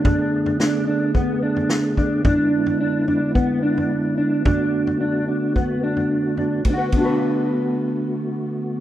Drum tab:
RD |----------------|----------------|----------------|x-x-------------|
SD |----o-------o---|----------------|----------------|----------------|
FT |o--o----o--o--o-|o--o--o-o--o----|o--o----o--o--o-|----------------|
BD |o-------o-----o-|o-------o-------|o-------o-------|o-o-------------|